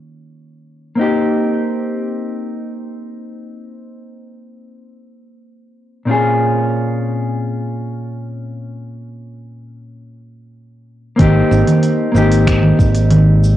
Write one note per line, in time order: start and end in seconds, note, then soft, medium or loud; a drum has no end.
0.00 0.93 D#3 medium
0.00 0.93 A#3 medium
0.00 0.94 C#4 medium
0.00 0.95 F4 medium
0.00 0.95 G4 medium
0.95 6.04 A#3 medium
0.95 6.04 C4 medium
0.95 6.05 D#4 medium
1.01 6.06 G4 medium
6.05 11.14 A#2 medium
6.05 11.15 C4 medium
6.05 11.15 C#4 medium
6.10 11.16 F4 medium
6.10 11.17 G#4 medium
11.16 11.41 G#1 loud
11.16 12.10 A#3 medium
11.16 12.10 C4 medium
11.16 12.12 D#4 medium
11.16 kick loud
11.16 open hi-hat soft
11.16 low conga medium
11.20 12.12 G4 medium
11.20 shaker soft
11.51 11.62 G#1 medium
11.51 shaker medium
11.67 open hi-hat medium
11.67 low conga medium
11.67 shaker soft
11.83 open hi-hat soft
11.83 shaker soft
12.12 12.71 G#1 medium
12.12 13.57 A#3 medium
12.12 13.57 C4 medium
12.12 13.57 D#4 medium
12.12 low conga medium
12.16 13.57 G4 medium
12.16 shaker medium
12.32 open hi-hat medium
12.32 shaker soft
12.47 finger snap medium
12.47 kick loud
12.47 open hi-hat soft
12.47 shaker soft
12.63 low conga medium
12.79 13.57 G#1 medium
12.79 kick loud
12.79 shaker medium
12.95 open hi-hat medium
12.95 shaker soft
13.11 open hi-hat soft
13.11 low conga medium
13.11 shaker soft
13.44 shaker medium